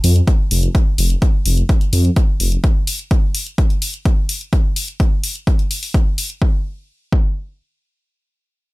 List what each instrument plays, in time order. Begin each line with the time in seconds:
0.04 detuned saw bass F2, open hi-hat
0.16 closed hi-hat
0.27 kick, closed hi-hat
0.51 detuned saw bass F1, open hi-hat
0.63 closed hi-hat
0.75 kick, closed hi-hat
0.98 detuned saw bass F1, open hi-hat
1.10 closed hi-hat
1.22 kick, closed hi-hat
1.46 detuned saw bass F1, open hi-hat
1.57 closed hi-hat
1.69 kick, closed hi-hat
1.81 closed hi-hat
1.93 detuned saw bass F2, open hi-hat
2.05 closed hi-hat
2.16 kick, closed hi-hat
2.40 detuned saw bass F1, open hi-hat
2.52 closed hi-hat
2.64 kick, closed hi-hat
2.87 open hi-hat
2.99 closed hi-hat
3.11 kick, closed hi-hat
3.35 open hi-hat
3.47 closed hi-hat
3.58 kick, closed hi-hat
3.70 closed hi-hat
3.82 open hi-hat
3.94 closed hi-hat
4.05 kick, closed hi-hat
4.29 open hi-hat
4.41 closed hi-hat
4.53 kick, closed hi-hat
4.76 open hi-hat
4.88 closed hi-hat
5.00 kick, closed hi-hat
5.24 open hi-hat
5.35 closed hi-hat
5.47 kick, closed hi-hat
5.59 closed hi-hat
5.71 open hi-hat
5.83 open hi-hat
5.94 kick, closed hi-hat
6.18 open hi-hat
6.30 closed hi-hat
6.42 kick
7.12 kick